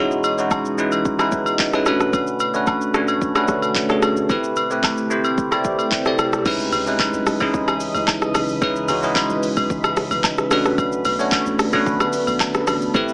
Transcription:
Already playing: B2 E3 G#3 C#4 D#4 G#4 C#5 D#5
0.00 E4 F#4
0.11 shaker
0.24 high agogo, shaker
0.38 G#3 C#4 D#4 E4 F#4, shaker
0.51 kick, high agogo, low woodblock, shaker
0.65 shaker
0.78 G#3 C#4 D#4 E4 B4, shaker
0.92 high agogo, shaker
1.05 kick, shaker
1.19 G#3 C#4 D#4 E4 B4, cross-stick, high agogo, shaker
1.32 kick, shaker
1.46 high agogo, shaker
1.59 kick, clap, shaker
1.73 G#3 C#4 D#4 E4 B4, cross-stick, shaker
1.86 D3 A3 C#4 D4 F#4 B4, cross-stick, high agogo, shaker
2.00 cross-stick, shaker
2.13 kick, high agogo, shaker
2.27 shaker
2.40 high agogo, shaker
2.54 A3 C#4 D4 F#4 B4, shaker
2.67 kick, high agogo, low woodblock, shaker
2.81 shaker
2.94 A3 C#4 D4 F#4 C#5, cross-stick, shaker
3.08 high agogo, shaker
3.22 kick, shaker
3.35 A3 C#4 D4 F#4 B4, cross-stick, high agogo, shaker
3.48 kick, cross-stick, shaker
3.62 high agogo, shaker
3.75 kick, clap, shaker
3.89 A3 C#4 D4 F#4 G#4, cross-stick, shaker
4.02 cross-stick, high agogo, shaker
4.17 shaker
4.29 C3 A3 C4 E4 G4 B4, kick, high agogo, shaker
4.44 shaker
4.56 high agogo, shaker
4.70 A3 C4 E4 G4 B4, shaker
4.83 kick, clap, high agogo, low woodblock, shaker
4.98 shaker
5.10 A3 C4 E4 G4 C5, shaker
5.24 high agogo, shaker
5.38 kick, shaker
5.51 A3 C4 E4 G4 D5, cross-stick, high agogo, shaker
5.64 kick, shaker
5.79 high agogo, shaker
5.92 kick, clap, shaker
6.05 A3 C4 E4 G4 D5, cross-stick, shaker
6.19 cross-stick, high agogo, shaker
6.33 cross-stick, shaker
6.45 C#2 C#3 E3 G#3 C#4 D#4 E4 B4 D#5, kick, crash, high agogo, shaker
6.60 shaker
6.72 C#2, open hi-hat, high agogo, shaker
6.86 G#3 C#4 D#4 E4 B4, shaker
6.99 kick, clap, high agogo, shaker
7.13 B1, shaker
7.27 cross-stick, open hi-hat, shaker
7.40 C#2 G#3 C#4 D#4 E4 G#4, kick, high agogo, shaker
7.54 C#2, kick, shaker
7.68 cross-stick, high agogo, shaker
7.80 open hi-hat, shaker
7.95 C#2, high agogo, shaker
8.07 kick, clap, low woodblock, shaker
8.22 cross-stick, shaker
8.34 B1, cross-stick, open hi-hat, high agogo, shaker
8.49 shaker
8.61 C#2 G#3 C#4 D#4 E4 B4, kick, high agogo, shaker
8.76 shaker
8.88 C#2 G#3 C#4 D#4 E4 F#4, open hi-hat, high agogo, shaker
9.02 G#3 C#4 D#4 E4 G#4, shaker
9.15 kick, clap, high agogo, shaker
9.30 G#1, shaker
9.43 open hi-hat, shaker
9.56 B1, kick, high agogo, shaker
9.70 C#2, kick, shaker
9.84 cross-stick, high agogo, shaker
9.97 cross-stick, open hi-hat, shaker
10.11 B1, high agogo, shaker
10.24 kick, clap, low woodblock, shaker
10.38 cross-stick, shaker
10.51 D3 A3 B3 C#4 D4 F#4 B4, cross-stick, open hi-hat, high agogo, shaker
10.65 cross-stick, shaker
10.78 B1, kick, high agogo, shaker
10.92 shaker
11.05 B1, open hi-hat, high agogo, shaker
11.19 A3 C#4 D4 F#4 C#5, shaker
11.32 kick, clap, high agogo, shaker
11.46 A1, shaker
11.59 cross-stick, open hi-hat, shaker
11.73 B1 A3 C#4 D4 F#4 B4, kick, high agogo, shaker
11.86 B1, kick, shaker
12.00 cross-stick, high agogo, shaker
12.13 open hi-hat, shaker
12.27 B1, high agogo, shaker
12.40 kick, clap, low woodblock, shaker
12.54 cross-stick, shaker
12.67 A1, cross-stick, open hi-hat, high agogo, shaker
12.82 shaker
12.94 A1 C3 A3 C4 E4 G4 B4, kick, high agogo, shaker
13.09 shaker

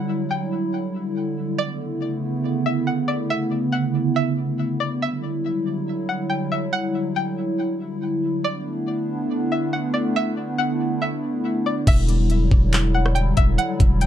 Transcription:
Already playing: D3 F#3 G3 E4 F#5
0.31 G5
1.58 C#3 A3 B3 E4 D5
2.66 E5
2.87 F#5
3.08 D5
3.30 E5
3.72 F#5
4.16 E5
4.80 D5
5.01 F#3 G3 E5
6.09 F#5
6.30 G5
6.52 E5
6.73 F#5
7.16 G5
8.44 D3 A3 B3 D4 D5
9.52 E5
9.73 F#5
9.94 D5
10.16 E5
10.58 F#5
11.02 E5
11.66 D5
11.87 E1 D3 F#3 G3 E4 E5, kick, closed hi-hat, crash
12.09 closed hi-hat
12.30 closed hi-hat
12.51 E1, kick
12.73 clap, closed hi-hat
12.94 F#5
13.06 cross-stick
13.15 G5, closed hi-hat
13.37 E1 E5, kick, closed hi-hat
13.58 F#5, closed hi-hat
13.80 E1, kick, closed hi-hat
14.01 G5, closed hi-hat

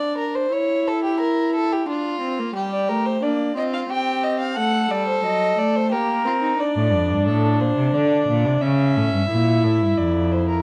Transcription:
Already playing: D4 D5
0.18 A#4
0.35 C5
0.52 E4 C#5
0.87 A4
1.04 G4
1.20 A#4
1.55 A4
1.73 G4
1.88 D4 F4
2.21 C4
2.39 A#3
2.55 G3 G4
2.73 D5
2.88 A3 A#4
3.06 C5
3.22 A#3 D4 D5
3.56 C4 F4 D#5
3.73 F5
3.89 C4 G4 G5
4.24 D#5
4.40 F5
4.57 A3 A4 F#5
4.90 G3 D5
5.08 C5
5.24 F#3 D#5
5.57 A3 D5
5.76 C5
5.92 A#3 G4 A#4
6.25 C4 F4
6.42 D#4
6.59 D4 D5
6.76 A2
6.93 F2
7.10 G2
7.27 A2 A4
7.60 A#2 C5
7.77 C3
7.94 D3 D5
8.28 A#2
8.45 C3
8.61 C#3 C#4 E5
8.97 A2
9.13 G2
9.30 A#2 E4
9.64 A2
9.82 G2
9.97 F2 D5
10.32 C5
10.49 A#4

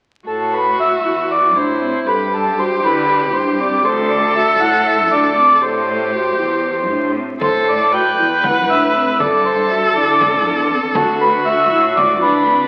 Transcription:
0.27 A2 F#4 A4
0.54 B4
0.79 F#4 E5
1.04 E2 E4
1.31 D5
1.56 A2 D4 E4 C5
1.82 C4
2.07 G2 G4 A4 B4
2.34 A4
2.58 F#4 C5
2.83 D3 E4 B4
3.33 G2 D4 C5
3.58 C4 D5
3.83 D2 A4 C5
4.09 D5
4.35 F#4 E5
4.59 A2 E4 F#5
4.86 E5
5.10 D2 D4 D5
5.36 C4
5.55 A4
5.60 A2 G4 A4 C5
6.12 F#4
6.37 E2 E4
6.89 A2 D4
7.16 C4
7.40 A2 A4 C5, frame drum
7.69 D5
7.92 F#4 B4 G5
8.17 E2 E4
8.44 F#5, frame drum
8.69 A2 D4 E5, frame drum
8.95 C4
9.20 G2 A4 D5, frame drum
9.45 C5
9.71 F#4 E5
9.95 D3 E4 D5
10.21 frame drum
10.45 E2 D4, frame drum
10.71 C4
10.95 D2 F#4 A4, frame drum
11.21 B4
11.46 F#4 E5
11.71 A2 E4
11.96 D5, frame drum
12.22 D2 D4 B4, frame drum
12.47 C4

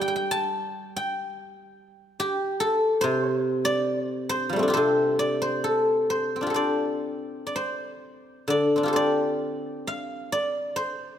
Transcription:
Already playing: G3 D5 F5
0.01 G5
0.08 G5
0.16 G5
0.31 A5
0.96 G5
2.20 G4
2.60 A4
3.01 C3 C5
3.65 D5
4.06 C5
4.29 C5
4.49 F3 G3
4.56 A3 C4
4.63 D4
4.68 F4 G4
4.74 C3 A4 C5
5.19 D5
5.42 C5
5.64 A4
6.10 C5
6.36 C4
6.41 D4 F4
6.46 G4 A4
6.54 C5 D5
7.47 D5
7.56 C5
8.48 D3 D5
8.76 C4 D4
8.83 F4 G4
8.88 A4
8.93 C5 D5
9.87 F5
10.32 D5
10.76 C5

